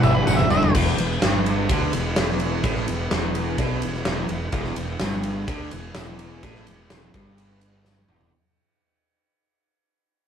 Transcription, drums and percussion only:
0.03 mid tom, tambourine
0.15 mid tom
0.27 mid tom, tambourine
0.39 floor tom
0.51 floor tom, tambourine
0.63 floor tom
0.75 kick, crash
0.87 snare
0.98 ride
1.22 snare, ride
1.46 ride
1.69 kick, ride
1.93 ride
2.16 snare, ride
2.40 ride
2.64 kick, ride
2.75 snare
2.88 ride
3.11 snare, ride
3.35 ride
3.58 kick, ride
3.82 ride
3.94 snare
4.05 snare, ride
4.29 ride
4.52 kick, ride
4.64 snare
4.76 ride
5.00 snare, ride, tambourine
5.23 ride
5.48 kick, ride
5.71 ride
5.95 snare, ride, tambourine
6.19 ride
6.43 kick, ride
6.55 snare
6.67 ride
6.90 snare, ride, tambourine
7.14 kick, ride
7.38 ride
7.61 ride
7.85 snare, tambourine
8.08 mid tom
8.21 floor tom

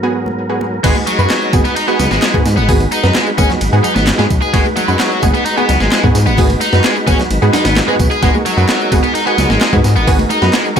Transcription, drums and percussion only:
0.26 muted conga, high conga
0.61 muted conga
0.84 kick, crash, ride, tambourine
0.95 tambourine, high conga
1.07 ride, tambourine
1.19 tambourine, muted conga
1.30 snare, clap, ride, tambourine
1.42 tambourine
1.53 kick, ride, tambourine, muted conga, high conga
1.65 ride, tambourine
1.76 ride, tambourine
1.88 tambourine
2.00 snare, ride, tambourine, muted conga, low conga
2.11 snare, tambourine, high conga
2.22 snare, clap, ride, tambourine
2.34 kick, tambourine, muted conga
2.45 snare, ride, tambourine
2.57 tambourine
2.69 kick, open hi-hat, tambourine
2.80 ride, tambourine, muted conga, high conga
2.92 ride, tambourine
3.03 snare, tambourine
3.15 snare, clap, ride, tambourine, muted conga
3.27 tambourine
3.38 kick, ride, tambourine, high conga
3.50 snare, tambourine, low conga
3.61 ride, tambourine, muted conga
3.73 tambourine
3.84 ride, tambourine, low conga
3.96 snare, tambourine, muted conga, high conga
4.07 snare, clap, ride, tambourine
4.19 snare, tambourine
4.30 kick, ride, tambourine
4.42 tambourine, muted conga
4.53 kick, ride, tambourine
4.65 tambourine, high conga
4.76 ride, tambourine, muted conga
4.88 tambourine
4.99 snare, clap, ride, tambourine
5.11 tambourine
5.22 kick, ride, tambourine, muted conga, high conga
5.34 ride, tambourine
5.46 ride, tambourine
5.58 tambourine, muted conga
5.69 snare, ride, tambourine, low conga
5.80 snare, tambourine, high conga
5.92 snare, clap, ride, tambourine
6.04 kick, tambourine, muted conga
6.15 snare, ride, tambourine
6.27 tambourine
6.37 kick, open hi-hat, tambourine, muted conga
6.50 ride, tambourine, high conga
6.61 ride, tambourine
6.73 snare, tambourine
6.84 snare, clap, ride, tambourine, muted conga
6.96 tambourine
7.06 kick, ride, tambourine, high conga
7.19 snare, tambourine, muted conga, low conga
7.31 ride, tambourine
7.42 tambourine
7.53 snare, ride, tambourine, low conga
7.65 snare, ride, tambourine, muted conga, high conga
7.76 snare, clap, ride, tambourine
7.89 tambourine
7.99 kick, ride, tambourine, muted conga
8.11 ride, tambourine
8.23 kick, ride, tambourine
8.35 tambourine, high conga
8.46 ride, tambourine
8.57 tambourine, muted conga
8.69 snare, clap, ride, tambourine
8.81 tambourine
8.92 kick, ride, tambourine, muted conga, high conga
9.04 ride, tambourine
9.15 ride, tambourine
9.27 tambourine
9.38 snare, ride, tambourine, muted conga, low conga
9.49 snare, tambourine, high conga
9.61 snare, clap, ride, tambourine
9.73 kick, tambourine, muted conga
9.84 snare, ride, tambourine
9.96 tambourine
10.07 kick, open hi-hat, tambourine
10.19 ride, tambourine, muted conga, high conga
10.30 ride, tambourine
10.42 snare, tambourine
10.53 snare, clap, ride, tambourine, muted conga
10.65 tambourine
10.76 kick, ride, tambourine, high conga

